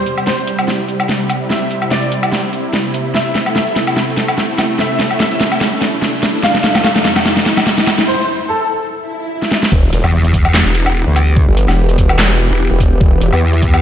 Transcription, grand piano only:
0.00 0.12 C5 medium
0.27 0.46 C5 medium
1.50 1.77 E5 medium
1.91 2.11 D5 medium
3.14 3.41 E5 loud
3.56 3.75 E5 medium
4.79 5.05 E5 medium
5.20 5.40 E5 medium
6.43 6.70 F5 loud
6.84 7.04 F5 medium
8.08 8.34 C5 loud
8.49 8.68 A4 loud

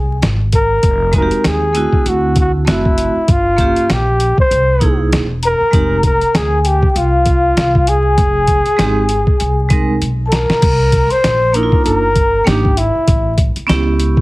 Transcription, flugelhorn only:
0.00 0.19 G#4 loud
0.54 1.11 A#4 medium
1.16 1.49 A#4 medium
1.47 2.10 G#4 medium
2.08 2.38 F#4 medium
2.40 2.53 F#4 medium
2.70 3.33 E4 medium
3.31 3.94 F4 medium
3.92 4.39 G4 medium
4.40 4.99 C5 medium
5.45 6.01 A#4 loud
6.06 6.38 A#4 loud
6.37 6.61 G#4 loud
6.61 6.69 G#4 medium
6.67 6.91 G4 medium
6.91 6.99 G4 medium
6.97 7.90 F4 medium
7.89 10.02 G#4 medium
10.28 10.36 A4 medium
10.34 11.13 A#4 loud
11.12 11.57 C5 loud
11.55 11.85 A#4 medium
11.86 12.49 A#4 loud
12.47 12.80 G4 medium
12.78 13.39 E4 medium

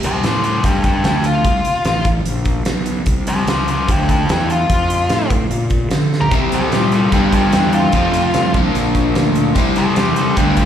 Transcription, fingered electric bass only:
0.00 0.22 C3 medium
0.23 0.63 A2 medium
0.64 1.04 G2 medium
1.04 1.44 D2 medium
1.44 1.64 C2 medium
1.65 muted fingered electric bass stroke soft
1.85 2.25 A1 medium
2.26 2.66 A#1 medium
2.66 3.06 B1 medium
3.06 3.46 C2 medium
3.47 3.87 C#2 medium
3.88 4.28 D2 medium
4.29 4.69 E2 medium
4.70 5.09 F2 medium
5.10 5.49 A2 medium
5.50 5.90 A#2 medium
5.91 6.31 D3 medium
6.32 6.71 C3 medium
6.72 7.11 A#2 medium
7.12 7.52 G2 medium
7.53 7.92 E2 medium
7.92 8.33 F2 medium
8.34 8.74 C2 medium
8.75 9.14 A#1 medium
9.16 9.55 D2 loud
9.56 9.96 C2 medium
9.97 10.16 E2 medium
10.17 muted fingered electric bass stroke soft
10.37 10.65 D2 medium

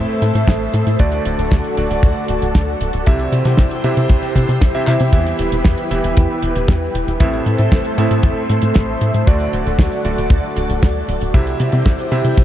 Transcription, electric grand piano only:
0.00 0.96 A2 medium
0.00 0.96 C4 medium
0.00 0.96 E4 medium
0.00 0.96 A4 medium
0.00 0.96 E5 loud
1.00 1.74 D3 medium
1.00 1.74 A3 medium
1.00 1.74 D4 medium
1.00 1.74 F#4 medium
1.00 1.74 D5 loud
1.77 3.03 D3 medium
1.77 3.03 A3 medium
1.77 3.03 D4 medium
1.77 3.03 F#4 medium
1.77 3.03 D5 medium
3.07 3.81 C3 medium
3.07 3.81 C4 medium
3.07 3.81 E4 medium
3.07 3.81 G4 medium
3.07 3.81 E5 loud
3.84 4.72 C3 medium
3.84 4.72 C4 medium
3.84 4.72 E4 medium
3.84 4.72 G4 medium
3.84 4.72 E5 loud
4.75 4.84 C3 medium
4.75 4.85 C4 medium
4.75 4.85 E4 medium
4.75 4.84 G4 medium
4.75 4.84 E5 loud
4.88 5.10 C4 medium
4.88 5.10 E4 medium
4.88 5.10 G4 medium
4.88 5.10 E5 loud
5.13 5.88 E3 medium
5.13 5.88 B3 medium
5.13 5.88 E4 medium
5.13 5.88 G4 medium
5.13 5.88 E5 medium
5.91 7.17 E3 medium
5.91 7.17 B3 medium
5.91 7.17 E4 medium
5.91 7.17 G4 medium
5.91 7.17 E5 loud
7.20 7.95 A2 medium
7.20 7.95 C4 medium
7.20 7.95 E4 medium
7.20 7.95 A4 medium
7.20 7.95 E5 loud
7.98 9.24 A2 medium
7.98 9.24 C4 medium
7.98 9.24 E4 medium
7.98 9.24 A4 medium
7.98 9.24 E5 loud
9.27 10.02 D3 medium
9.27 10.02 A3 medium
9.27 10.02 D4 medium
9.27 10.02 F#4 medium
9.27 10.02 D5 loud
10.05 11.31 D3 medium
10.05 11.31 A3 medium
10.05 11.31 D4 medium
10.05 11.31 F#4 medium
10.05 11.31 D5 medium
11.34 12.09 C3 medium
11.34 12.09 C4 medium
11.34 12.09 E4 medium
11.34 12.09 G4 medium
11.34 12.09 E5 loud
12.12 12.44 C3 medium
12.12 12.44 C4 medium
12.12 12.44 E4 medium
12.12 12.44 G4 medium
12.12 12.44 E5 loud

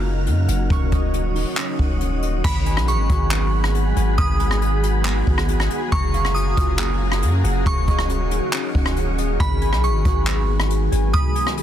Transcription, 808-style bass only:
0.00 0.28 F#1 loud
0.27 0.48 F#2 loud
0.49 0.69 F#1 loud
0.70 0.91 D#1 loud
0.92 1.44 D#1 loud
1.79 2.42 D#1 loud
2.44 2.78 G#1 loud
2.77 2.95 B1 loud
2.93 3.09 G#1 loud
3.10 3.93 G#1 loud
3.97 4.17 G#1 loud
4.18 5.23 G#1 loud
5.27 5.69 G#1 loud
5.92 6.55 F#1 loud
6.57 7.24 F#1 loud
7.23 7.43 F#2 loud
7.44 7.65 F#1 loud
7.66 7.87 D#1 loud
7.88 8.40 D#1 loud
8.75 9.37 D#1 loud
9.40 9.74 G#1 loud
9.73 9.90 B1 loud
9.89 10.04 G#1 medium
10.05 10.89 G#1 loud
10.92 11.13 G#1 loud

